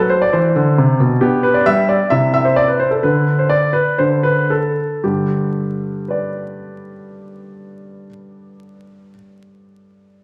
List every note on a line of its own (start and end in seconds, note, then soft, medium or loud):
0.00 0.21 F#3 medium
0.00 1.18 D4 soft
0.00 0.10 B4 medium
0.10 0.22 C5 medium
0.22 0.33 D5 medium
0.33 0.55 E3 medium
0.33 0.99 C5 medium
0.56 0.77 D3 medium
0.78 0.99 C3 medium
1.00 1.21 B2 medium
1.21 1.53 B3 medium
1.21 2.07 D4 soft
1.21 1.44 G4 medium
1.43 1.55 B4 medium
1.54 1.66 D5 medium
1.66 1.99 G3 medium
1.66 1.89 E5 loud
1.89 2.11 D5 medium
2.10 2.77 C3 medium
2.10 2.99 E4 soft
2.10 2.32 E5 medium
2.34 2.45 E5 medium
2.45 2.57 C5 medium
2.56 2.68 D5 medium
2.68 2.80 B4 medium
2.79 2.92 C5 medium
2.91 3.03 A4 medium
3.03 3.73 D3 medium
3.03 3.96 D4 soft
3.03 3.39 B4 medium
3.39 3.51 C5 medium
3.49 3.74 D5 medium
3.73 3.99 B4 medium
3.98 4.75 D3 soft
3.98 5.00 D4 soft
3.98 4.24 C5 medium
4.23 4.50 B4 medium
4.50 5.04 A4 medium
5.04 8.06 G2 soft
5.04 8.07 D3 soft
5.04 8.06 G4 soft
6.08 9.11 B4 soft
6.08 9.13 D5 soft